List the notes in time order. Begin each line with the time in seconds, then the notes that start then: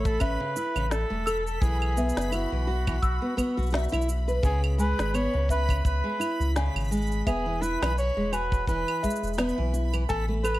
Already playing: A1 A3 B5 E6
0.05 A4, kick, cabasa
0.20 A1 C#4 B4 E5, kick, cabasa, claves
0.40 C#3
0.56 E4, cabasa
0.75 A1 C#3, cabasa, claves
0.90 A4, snare, cabasa
1.10 E1 A3
1.26 A4 E6, cabasa, claves
1.46 A4, cabasa
1.61 B1 E3 G#4, kick, cabasa
1.82 claves
1.97 B3 E5, cabasa
2.09 cabasa
2.17 F#1, snare, cabasa
2.21 cabasa
2.32 E4 F#4, cabasa, claves
2.52 B1 E3
2.67 F#4
2.87 E3, kick, cabasa, claves
3.02 B1 E6, kick, cabasa
3.22 B3
3.37 B3, kick, cabasa, claves
3.57 B1 F#4, cabasa
3.63 cabasa
3.66 cabasa
3.70 F#4 E5, snare, cabasa
3.74 cabasa
3.79 cabasa
3.84 cabasa
3.89 E4, cabasa
3.93 B1, cabasa, claves
4.02 cabasa
4.09 cabasa
4.28 B4, cabasa
4.43 C#2 C#3 G#4, kick, cabasa
4.64 claves
4.78 G#3 B4 G#5, cabasa
4.99 G#1, snare, cabasa
5.14 B3 C#5, cabasa, claves
5.33 C#2 C#3
5.49 C#4 B4 E5, kick, cabasa
5.68 C#3, kick, cabasa, claves
5.85 C#2 B4, kick, cabasa
6.04 G#3
6.20 E4, cabasa, claves
6.40 C#2, cabasa
6.56 C#3 G#5, snare, cabasa
6.75 G#1, cabasa, claves
6.80 cabasa
6.84 cabasa
6.88 G#3, cabasa
6.92 cabasa
6.97 cabasa
7.02 cabasa
7.07 cabasa
7.12 cabasa
7.27 E1 B3 G#4 E5, kick, cabasa, claves
7.46 E3
7.62 E4 B4, cabasa
7.82 B1 E3, snare, cabasa, claves
7.98 C#5, cabasa
8.17 E1 G#3
8.32 F#4 B4 G#5, cabasa, claves
8.52 kick, cabasa
8.67 E1 E3 B4, kick, cabasa
8.88 claves
9.03 G#3 E5, kick, cabasa
9.10 cabasa
9.16 cabasa
9.23 E1, cabasa
9.27 cabasa
9.34 cabasa
9.38 B3, snare, cabasa, claves
9.49 cabasa
9.58 B1 E3
9.74 E4, cabasa
9.93 E3, cabasa, claves
10.09 A1 A4 G#5, kick, cabasa
10.29 A3
10.44 A4 B4, cabasa, claves
10.55 claves